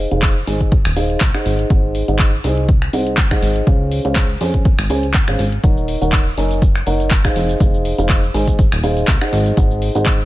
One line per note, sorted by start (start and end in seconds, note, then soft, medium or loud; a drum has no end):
0.11 0.43 F1 medium
0.11 0.32 D#4 medium
0.11 0.32 G#4 medium
0.11 0.32 C5 medium
0.11 0.32 F5 medium
0.11 closed hi-hat soft
0.22 kick loud
0.22 clap loud
0.22 closed hi-hat medium
0.47 0.81 G#1 medium
0.47 0.68 D#4 medium
0.47 0.68 G#4 medium
0.47 0.68 C5 medium
0.47 0.68 G#5 medium
0.47 open hi-hat loud
0.61 kick medium
0.61 closed hi-hat medium
0.72 kick loud
0.72 closed hi-hat medium
0.85 1.17 D#1 loud
0.85 finger snap medium
0.96 1.17 D#4 medium
0.96 1.17 G#4 medium
0.96 1.17 C5 medium
0.96 1.17 F5 medium
0.96 open hi-hat loud
1.10 closed hi-hat medium
1.21 1.31 C2 loud
1.21 kick loud
1.21 clap loud
1.21 closed hi-hat medium
1.34 1.68 D#4 medium
1.34 1.68 G#4 medium
1.34 1.68 C5 medium
1.34 1.68 F#5 loud
1.34 finger snap medium
1.34 closed hi-hat soft
1.46 1.65 G#1 loud
1.46 open hi-hat loud
1.59 closed hi-hat medium
1.70 2.03 G#1 loud
1.70 2.05 D#4 medium
1.70 2.05 G#4 medium
1.70 2.05 C5 medium
1.70 2.05 F#5 medium
1.70 kick loud
1.70 closed hi-hat medium
1.95 open hi-hat loud
2.08 2.40 G#1 medium
2.08 2.29 D#4 medium
2.08 2.29 G#4 medium
2.08 2.29 C5 medium
2.08 2.29 F#5 medium
2.08 closed hi-hat soft
2.19 kick loud
2.19 clap loud
2.19 closed hi-hat medium
2.44 2.89 C2 loud
2.44 2.65 D#4 medium
2.44 2.65 G#4 medium
2.44 2.65 C5 medium
2.44 2.65 G#5 medium
2.44 open hi-hat loud
2.57 closed hi-hat soft
2.69 kick loud
2.69 closed hi-hat medium
2.82 finger snap medium
2.93 3.38 C2 medium
2.93 3.14 D#4 medium
2.93 3.14 G#4 medium
2.93 3.14 C5 medium
2.93 3.14 F#5 medium
2.93 open hi-hat loud
3.07 closed hi-hat medium
3.17 kick loud
3.17 clap loud
3.17 closed hi-hat medium
3.31 3.64 D#4 medium
3.31 3.64 G#4 medium
3.31 3.64 C5 medium
3.31 3.64 F#5 loud
3.31 finger snap medium
3.31 kick medium
3.31 closed hi-hat soft
3.42 3.62 G#1 medium
3.42 open hi-hat loud
3.56 closed hi-hat soft
3.67 4.00 C#2 medium
3.67 4.02 C#4 medium
3.67 4.02 G#4 medium
3.67 4.02 C5 medium
3.67 4.02 F5 medium
3.67 kick loud
3.67 closed hi-hat medium
3.92 open hi-hat loud
4.05 4.37 C#2 medium
4.05 4.25 C#4 medium
4.05 4.25 G#4 medium
4.05 4.25 C5 medium
4.05 4.25 F5 medium
4.05 closed hi-hat soft
4.16 kick loud
4.16 clap loud
4.16 closed hi-hat medium
4.29 closed hi-hat soft
4.41 4.74 F2 medium
4.41 4.62 C#4 medium
4.41 4.62 G#4 medium
4.41 4.62 C5 medium
4.41 4.62 G#5 medium
4.41 open hi-hat loud
4.54 kick medium
4.54 closed hi-hat soft
4.65 kick loud
4.65 closed hi-hat medium
4.79 4.89 G#1 loud
4.79 finger snap medium
4.90 5.23 C#2 loud
4.90 5.04 C#4 medium
4.90 5.04 G#4 medium
4.90 5.04 C5 medium
4.90 5.04 G#5 medium
4.90 open hi-hat loud
5.03 closed hi-hat soft
5.14 kick loud
5.14 clap loud
5.14 closed hi-hat medium
5.28 5.37 G#1 medium
5.28 5.40 C#4 medium
5.28 5.40 G#4 medium
5.28 5.40 C5 medium
5.28 5.40 F5 medium
5.28 finger snap medium
5.28 closed hi-hat soft
5.39 5.59 G#1 medium
5.39 open hi-hat loud
5.52 closed hi-hat soft
5.64 5.97 D#1 loud
5.64 5.98 D#4 medium
5.64 5.98 A#4 medium
5.64 5.98 C#5 medium
5.64 5.98 F#5 medium
5.64 kick loud
5.64 closed hi-hat medium
5.64 cabasa medium
5.77 cabasa soft
5.88 open hi-hat loud
6.02 6.33 D#1 medium
6.02 6.22 D#4 medium
6.02 6.22 A#4 medium
6.02 6.22 C#5 medium
6.02 6.22 F#5 medium
6.02 closed hi-hat soft
6.02 cabasa medium
6.12 kick loud
6.12 clap loud
6.12 closed hi-hat medium
6.12 cabasa medium
6.26 cabasa soft
6.37 6.83 F#1 medium
6.37 6.58 D#4 medium
6.37 6.58 A#4 medium
6.37 6.58 C#5 medium
6.37 6.58 G#5 medium
6.37 open hi-hat loud
6.51 closed hi-hat soft
6.51 cabasa medium
6.62 kick loud
6.62 closed hi-hat medium
6.62 cabasa medium
6.75 finger snap medium
6.75 cabasa soft
6.87 7.32 F#1 medium
6.87 7.08 D#4 medium
6.87 7.08 A#4 medium
6.87 7.08 C#5 medium
6.87 7.08 F#5 medium
6.87 open hi-hat loud
7.00 closed hi-hat soft
7.00 cabasa medium
7.11 kick loud
7.11 clap loud
7.11 closed hi-hat medium
7.11 cabasa medium
7.25 7.58 D#4 medium
7.25 7.58 G#4 medium
7.25 7.58 C5 medium
7.25 7.58 F5 loud
7.25 finger snap medium
7.25 kick medium
7.25 closed hi-hat soft
7.25 cabasa soft
7.36 7.55 F1 loud
7.36 open hi-hat loud
7.49 closed hi-hat soft
7.49 cabasa medium
7.60 7.94 F1 loud
7.60 7.95 D#4 medium
7.60 7.95 G#4 medium
7.60 7.95 C5 medium
7.60 kick loud
7.60 closed hi-hat medium
7.60 cabasa medium
7.74 cabasa soft
7.85 open hi-hat loud
7.98 8.30 F1 medium
7.98 8.19 D#4 medium
7.98 8.19 G#4 medium
7.98 8.19 C5 medium
7.98 8.19 F5 loud
7.98 closed hi-hat medium
7.98 cabasa medium
8.09 kick loud
8.09 clap loud
8.09 closed hi-hat medium
8.09 cabasa medium
8.23 cabasa soft
8.34 8.67 G#1 medium
8.34 8.55 D#4 medium
8.34 8.55 G#4 medium
8.34 8.55 C5 medium
8.34 8.55 G#5 medium
8.34 open hi-hat loud
8.48 kick medium
8.48 closed hi-hat soft
8.48 cabasa medium
8.59 kick loud
8.59 closed hi-hat medium
8.59 cabasa medium
8.72 9.04 D#1 loud
8.72 finger snap medium
8.72 cabasa soft
8.84 9.04 D#4 medium
8.84 9.04 G#4 medium
8.84 9.04 C5 medium
8.84 9.04 F5 medium
8.84 open hi-hat loud
8.97 closed hi-hat medium
8.97 cabasa medium
9.08 9.18 C2 loud
9.08 kick loud
9.08 clap loud
9.08 closed hi-hat medium
9.08 cabasa medium
9.21 9.55 D#4 medium
9.21 9.55 G#4 medium
9.21 9.55 C5 medium
9.21 9.55 F#5 loud
9.21 finger snap medium
9.21 closed hi-hat soft
9.21 cabasa soft
9.33 9.52 G#1 loud
9.33 open hi-hat loud
9.46 closed hi-hat soft
9.46 cabasa medium
9.57 9.90 G#1 loud
9.57 9.92 D#4 medium
9.57 9.92 G#4 medium
9.57 9.92 C5 medium
9.57 9.92 F#5 medium
9.57 kick loud
9.57 closed hi-hat medium
9.57 cabasa medium
9.71 cabasa soft
9.82 open hi-hat loud
9.95 10.25 G#1 medium
9.95 10.15 D#4 medium
9.95 10.15 G#4 medium
9.95 10.16 C5 medium
9.95 10.16 F#5 medium
9.95 closed hi-hat medium
9.95 cabasa medium
10.06 kick loud
10.06 clap loud
10.06 closed hi-hat medium
10.06 cabasa medium
10.20 cabasa soft